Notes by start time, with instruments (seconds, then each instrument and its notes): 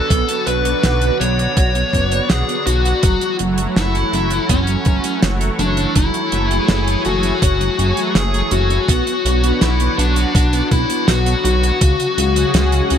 Already playing: analog synth pad D3 F#3 B3 F#4, lead electric guitar A4
0.10 analog synth bass B1, clean electric guitar B3, analog synth pad D4, kick, closed hi-hat
0.29 clean electric guitar B3, closed hi-hat
0.47 analog synth bass B1, clean electric guitar B3, lead electric guitar B4, closed hi-hat
0.65 clean electric guitar B3, closed hi-hat
0.83 analog synth bass B1, clean electric guitar F#4, snare, closed hi-hat
1.01 clean electric guitar B3, closed hi-hat
1.20 analog synth bass B1, clean electric guitar B3, lead electric guitar C#5, closed hi-hat
1.38 clean electric guitar F#4, closed hi-hat
1.57 analog synth bass B1, clean electric guitar F#4, kick, closed hi-hat
1.75 clean electric guitar B3, closed hi-hat
1.93 analog synth bass F#1, clean electric guitar B3, kick, closed hi-hat
2.12 clean electric guitar B3, closed hi-hat
2.30 analog synth bass B1, clean electric guitar F#4, lead electric guitar G#4, snare, closed hi-hat
2.49 clean electric guitar B3, closed hi-hat
2.67 analog synth bass B1, lead electric guitar F#4, clean electric guitar F#4, closed hi-hat
2.85 clean electric guitar F#4, closed hi-hat
3.03 analog synth bass F#1, analog synth pad E3 A3 C#5, clean electric guitar F#3, kick, closed hi-hat
3.21 clean electric guitar F#3, closed hi-hat
3.39 analog synth bass F#1, clean electric guitar F#3, closed hi-hat
3.58 clean electric guitar F#3, closed hi-hat
3.76 analog synth bass F#1, clean electric guitar C#4, lead electric guitar E4, snare, closed hi-hat
3.95 clean electric guitar F#3, closed hi-hat
4.13 analog synth bass F#1, clean electric guitar F#3, closed hi-hat
4.30 clean electric guitar C#4, closed hi-hat
4.49 analog synth bass F#1, clean electric guitar C#4, lead electric guitar C#4, kick, closed hi-hat
4.67 clean electric guitar F#3, closed hi-hat
4.85 analog synth bass F#1, clean electric guitar F#3, kick, closed hi-hat
5.04 clean electric guitar F#3, closed hi-hat
5.22 analog synth bass F#1, clean electric guitar C#4, snare, closed hi-hat
5.41 clean electric guitar F#3, closed hi-hat
5.59 analog synth bass F#1, clean electric guitar C#4, lead electric guitar D4, closed hi-hat
5.77 clean electric guitar C#4, closed hi-hat
5.96 analog synth bass F#1, clean electric guitar F#3, lead electric guitar E4, analog synth pad G#4, kick, closed hi-hat
6.14 clean electric guitar F#3, closed hi-hat
6.32 analog synth bass F#1, clean electric guitar F#3, closed hi-hat
6.51 clean electric guitar F#3, closed hi-hat
6.68 analog synth bass F#1, clean electric guitar C#4, snare, closed hi-hat
6.87 clean electric guitar F#3, closed hi-hat
7.05 analog synth bass F#1, clean electric guitar F#3, lead electric guitar F#4, closed hi-hat
7.23 clean electric guitar C#4, closed hi-hat
7.42 analog synth bass F#1, clean electric guitar C#4, kick, closed hi-hat
7.61 clean electric guitar F#3, closed hi-hat
7.79 analog synth bass F#1, clean electric guitar F#3, closed hi-hat
7.97 clean electric guitar F#3, closed hi-hat
8.15 analog synth bass F#1, clean electric guitar C#4, lead electric guitar G#4, snare, closed hi-hat
8.34 clean electric guitar F#3, closed hi-hat
8.51 analog synth bass F#1, clean electric guitar C#4, lead electric guitar F#4, closed hi-hat
8.70 clean electric guitar C#4, closed hi-hat
8.88 analog synth bass B1, analog synth pad D3 F#3 B3 F#4, clean electric guitar B3, kick, closed hi-hat
9.07 clean electric guitar B3, closed hi-hat
9.25 analog synth bass B1, clean electric guitar B3, closed hi-hat
9.43 clean electric guitar B3, closed hi-hat
9.61 analog synth bass B1, lead electric guitar E4, clean electric guitar F#4, snare, closed hi-hat
9.80 clean electric guitar B3, closed hi-hat
9.98 analog synth bass B1, clean electric guitar B3, lead electric guitar D4, closed hi-hat
10.16 clean electric guitar F#4, closed hi-hat
10.35 analog synth bass B1, clean electric guitar F#4, kick, closed hi-hat
10.53 clean electric guitar B3, closed hi-hat
10.71 analog synth bass B1, clean electric guitar B3, lead electric guitar E4, kick, closed hi-hat
10.90 clean electric guitar B3, closed hi-hat
11.08 analog synth bass B1, lead electric guitar F#4, clean electric guitar F#4, snare, closed hi-hat
11.26 clean electric guitar B3, closed hi-hat
11.44 analog synth bass B1, clean electric guitar F#4, lead electric guitar F#4, closed hi-hat
11.63 clean electric guitar F#4, closed hi-hat
11.81 analog synth bass C#2, clean electric guitar C#3, analog synth pad C#3 G#3 G#4, kick, closed hi-hat
11.99 clean electric guitar C#3, closed hi-hat
12.18 analog synth bass C#2, clean electric guitar C#3, closed hi-hat
12.36 clean electric guitar C#3, closed hi-hat
12.54 analog synth bass C#2, clean electric guitar G#3, snare, closed hi-hat
12.72 clean electric guitar C#3, closed hi-hat
12.90 analog synth bass C#2, clean electric guitar C#3, closed hi-hat